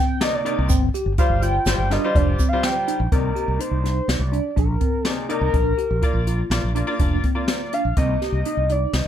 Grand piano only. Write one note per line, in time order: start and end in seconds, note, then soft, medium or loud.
0.21 0.39 C3 medium
0.21 0.39 A#3 medium
0.21 0.40 D#4 medium
0.21 0.40 D5 medium
0.45 0.70 C3 medium
0.45 0.70 A#3 medium
0.45 0.70 D#4 medium
0.45 0.70 D5 medium
1.19 1.54 G3 medium
1.19 1.55 F4 medium
1.19 1.55 C5 medium
1.67 1.85 G3 medium
1.67 1.85 F4 medium
1.67 1.85 C5 medium
1.91 2.00 G3 medium
1.91 2.00 F4 medium
1.91 2.00 A#4 medium
2.04 2.39 G3 medium
2.04 2.40 F4 medium
2.04 2.40 C5 medium
2.53 2.97 G3 medium
2.53 2.97 F4 medium
2.53 2.97 C5 medium
3.12 3.83 C3 medium
3.12 3.83 A#3 medium
3.12 3.84 D#4 soft
3.12 3.84 D5 medium
5.05 5.24 C3 medium
5.05 5.24 A#3 medium
5.05 5.24 D#4 medium
5.05 5.24 D5 medium
5.29 5.54 C3 medium
5.29 5.54 A#3 medium
5.29 5.54 D#4 medium
5.29 5.54 D5 medium
6.03 6.39 A#3 medium
6.03 6.39 F4 medium
6.03 6.39 D5 medium
6.51 6.69 A#3 medium
6.51 6.69 F4 medium
6.51 6.69 D5 medium
6.75 6.84 A#3 medium
6.75 6.85 F4 medium
6.75 6.85 D5 medium
6.87 7.23 A#3 medium
6.87 7.23 F4 medium
6.87 7.23 D5 loud
7.35 7.80 A#3 medium
7.35 7.80 F4 medium
7.35 7.80 D5 medium
7.97 8.68 C3 medium
7.97 8.68 A#3 medium
7.97 8.68 D#4 medium
7.97 8.68 D#5 medium